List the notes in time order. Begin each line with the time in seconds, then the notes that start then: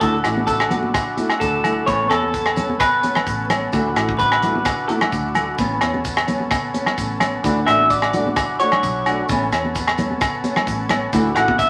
0.00 D2 A3 D4 E4 F#4 A4, muted nylon-string guitar stroke, kick, maracas
0.24 A1 A3 E4 F#4, cross-stick, closed hi-hat, low agogo, maracas
0.37 high conga
0.47 A4, kick, maracas
0.60 cross-stick, low agogo
0.71 A3 F#4, muted nylon-string guitar stroke, closed hi-hat, high conga, low conga, maracas
0.83 high conga
0.94 kick, cross-stick, low agogo, maracas
1.17 A3 E4 F#4, closed hi-hat, high conga, maracas
1.29 cross-stick, low agogo
1.40 D2 A4, kick, maracas
1.64 A3 E4, closed hi-hat, low conga, low agogo, maracas
1.86 A1 E3 B3 C#4 A4 C#5, kick, maracas
2.10 E2 B3 C#4 A4, cross-stick, closed hi-hat, low agogo, maracas
2.23 high conga
2.34 kick, maracas
2.46 cross-stick, low agogo
2.56 B3 C#4, closed hi-hat, high conga, low conga, maracas
2.70 high conga
2.80 B4, kick, cross-stick, low agogo, maracas
3.03 B3 C#4, closed hi-hat, high conga, maracas
3.15 cross-stick, low conga, low agogo
3.27 A1, kick, maracas
3.50 B3 C#4, cross-stick, closed hi-hat, low conga, low agogo, maracas
3.72 D2 E3 A3 D4 E4 F#4, muted nylon-string guitar stroke, kick, maracas
3.96 A1 A3 E4 F#4, cross-stick, closed hi-hat, low agogo, maracas
4.09 kick
4.19 B4, kick, maracas
4.32 cross-stick, low agogo
4.42 A3 E4 F#4, closed hi-hat, low conga, maracas
4.55 high conga
4.65 kick, cross-stick, low agogo, maracas
4.88 A3 E4 F#4, muted clean electric guitar stroke, closed hi-hat, high conga, maracas
5.01 cross-stick, low conga, low agogo
5.12 D2, kick, maracas
5.35 A3 F#4, closed hi-hat, low conga, low agogo, maracas
5.56 A1 E3 B3 C#4 A4, kick, maracas
5.81 E2 B3 C#4, cross-stick, closed hi-hat, low agogo, maracas
5.94 high conga
6.05 kick, maracas
6.17 cross-stick, low agogo
6.27 B3 C#4, closed hi-hat, high conga, low conga, maracas
6.40 high conga
6.51 kick, cross-stick, low agogo, maracas
6.74 B3 C#4, closed hi-hat, high conga, maracas
6.86 cross-stick, low conga, low agogo
6.98 A1, kick, maracas
7.20 B3 C#4, cross-stick, closed hi-hat, low conga, low agogo, maracas
7.43 D2 E3 A3 D4 E4 F#4, kick, maracas
7.66 A1 A3 D4 F#4 E5, cross-stick, closed hi-hat, low agogo, maracas
7.79 high conga
7.90 D5, kick, maracas
8.02 cross-stick, low agogo
8.13 A3 D4 F#4, closed hi-hat, low conga, maracas
8.26 high conga
8.36 kick, cross-stick, low agogo, maracas
8.60 A3 D4 F#4 C#5, closed hi-hat, maracas
8.72 cross-stick, low conga, low agogo
8.83 B1, kick, maracas
9.06 A3 D4 F#4, closed hi-hat, low agogo, maracas
9.29 A1 E3 B3 C#4 A4, kick, maracas
9.52 E2 C#4, cross-stick, closed hi-hat, low agogo, maracas
9.65 high conga
9.75 kick, maracas
9.87 cross-stick, low agogo
9.98 B3 C#4, closed hi-hat, high conga, low conga, maracas
10.11 high conga
10.21 kick, cross-stick, low agogo, maracas
10.44 B3 C#4, closed hi-hat, high conga, maracas
10.56 cross-stick, low conga, low agogo
10.67 A1, kick, maracas
10.89 B3 C#4, cross-stick, closed hi-hat, low conga, low agogo, maracas
11.13 D2 E3 A3 D4 E4 F#4, kick, maracas
11.35 A1 A3 E4 F#4 F#5, cross-stick, closed hi-hat, low agogo, maracas
11.48 kick, high conga
11.59 E5, kick, maracas